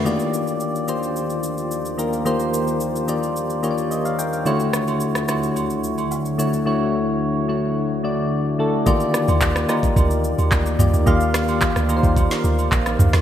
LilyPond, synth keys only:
\new Staff \with { instrumentName = "Synth keys" } { \time 4/4 \key ees \major \tempo 4 = 109 << { r1 | r2. <g' ees''>16 f''16 <bes' g''>16 f''16~ | f''16 r2. r8. | r1 |
r1 | r1 | } \\ { <ees bes f' g' d''>4 r8 <ees bes f' g' c''>4. r8 <ees bes f' g' bes'>8 | <ees bes f' g' c''>4 r8 <ees bes f' g' d''>4 <ees bes f' g' des'' d''>4 r8 | <d a e' fis' cis''>4 r8 <d a e' fis' cis''>4. r8 <d a e' fis' cis''>8 | <d a e' fis' cis''>4 r8 <d a e' fis' cis''>4 <d a e' fis' d''>4 <d a e' fis' a'>8 |
<ees bes f' g' d''>4 r8 <bes ees' f' g' bes'>4. r8 <ees bes f' g' d''>8 | <ees bes f' g' f''>4 r8 <ees bes f' g' bes' c''>4. r4 | } >> }